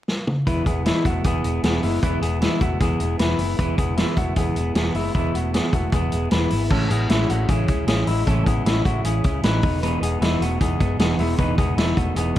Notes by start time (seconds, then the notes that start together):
0.08 snare
0.27 mid tom
0.47 E1 E3 G#3 B3 E4 B4, kick, closed hi-hat
0.66 E1 G#3 B3 E4 G#4, kick, closed hi-hat
0.85 E3 G#3 B3 E4, snare, closed hi-hat
1.05 E1 G#3 A3 B3 E4 F#4, kick, closed hi-hat
1.24 E1 E3 G#3 B3 E4 G#4, kick, closed hi-hat
1.44 E1 G#3 B3 E4, closed hi-hat
1.63 E1 E3 G#3 B3 E4 G#4, snare, closed hi-hat
1.83 F#1 G#3 B3 E4, open hi-hat
2.03 E1 E3 G#3 B3 E4 B4, kick, closed hi-hat
2.21 E1 G#3 B3 E4 G#4, closed hi-hat
2.41 E3 G#3 B3 E4, snare, closed hi-hat
2.61 E1 G#3 A3 B3 E4 F#4, kick, closed hi-hat
2.80 E1 E3 G#3 B3 E4 G#4, kick, closed hi-hat
3.00 E1 G#3 B3 E4, closed hi-hat
3.19 E1 E3 G#3 B3 E4 B4, snare, closed hi-hat
3.39 F#1 G#3 B3 E4, open hi-hat
3.58 E1 E3 G#3 B3 E4 B4, kick, closed hi-hat
3.78 E1 G#3 B3 E4 G#4, kick, closed hi-hat
3.97 E3 G#3 B3 E4, snare, closed hi-hat
4.17 E1 G#3 A3 B3 E4 F#4, kick, closed hi-hat
4.36 E1 E3 G#3 B3 E4 G#4, kick, closed hi-hat
4.56 E1 G#3 B3 E4, closed hi-hat
4.75 E1 E3 G#3 B3 E4 G#4, snare, closed hi-hat
4.94 F#1 G#3 B3 E4, open hi-hat
5.14 E1 E3 G#3 B3 E4, kick, closed hi-hat
5.34 E1 G#3 A3 B3 E4 F#4, closed hi-hat
5.54 E3 G#3 B3 E4 G#4, snare, closed hi-hat
5.73 E1 G#3 A3 B3 E4 F#4, kick, closed hi-hat
5.92 E1 E3 G#3 B3 E4 G#4, kick, closed hi-hat
6.12 E1 G#3 B3 E4, closed hi-hat
6.31 E1 E3 G#3 B3 E4 B4, snare, closed hi-hat
6.50 G#1 G#3 B3 E4, open hi-hat
6.70 A1 A2 E3 G#3 C#4 E4 A4, kick, crash
6.89 A1 G#3 B3 C#4 E4 G#4, closed hi-hat
7.09 A1 A2 E3 G#3 C#4 E4, snare, closed hi-hat
7.28 A1 G#3 A3 C#4 E4 F#4, closed hi-hat
7.48 A1 E3 G#3 C#4 E4 G#4, kick, closed hi-hat
7.68 C#2 G#3 C#4 E4, kick, closed hi-hat
7.87 A1 A2 E3 G#3 C#4 E4 G#4, snare, closed hi-hat
8.06 A1 G#3 C#4 E4, open hi-hat
8.26 A1 A2 E3 G#3 C#4 E4 A4, kick, closed hi-hat
8.45 A1 G#3 B3 C#4 E4 G#4, kick, closed hi-hat
8.65 A1 A2 E3 G#3 C#4 E4, snare, closed hi-hat
8.85 A1 G#3 A3 C#4 E4 F#4, kick, closed hi-hat
9.04 A1 E3 G#3 C#4 E4 G#4, closed hi-hat
9.24 C#2 G#3 C#4 E4, kick, closed hi-hat
9.43 A1 A2 E3 G#3 C#4 D#4 E4 B4, snare, closed hi-hat
9.63 E1 G#3 B3 D#4, kick, open hi-hat
9.82 E3 G#3 B3 D#4 B4, closed hi-hat
10.01 E1 G#3 B3 D#4 G#4, closed hi-hat
10.21 E1 E3 G#3 B3 D#4 E4, snare, closed hi-hat
10.40 E1 G#3 A3 B3 D#4 F#4, closed hi-hat
10.60 E1 E3 G#3 B3 D#4 G#4, kick, closed hi-hat
10.79 F#1 G#3 B3 D#4, kick, closed hi-hat
10.99 E1 E3 G#3 B3 D#4 G#4, snare, closed hi-hat
11.18 E1 G#3 B3 D#4 E4, open hi-hat
11.38 E1 E3 G#3 B3 D#4 B4, kick, closed hi-hat
11.58 E1 G#3 B3 D#4 G#4, kick, closed hi-hat
11.77 E1 E3 G#3 B3 D#4 E4, snare, closed hi-hat
11.96 E1 G#3 A3 B3 D#4 F#4, kick, closed hi-hat
12.16 E1 E3 G#3 B3 D#4 G#4, closed hi-hat
12.35 D#4, closed hi-hat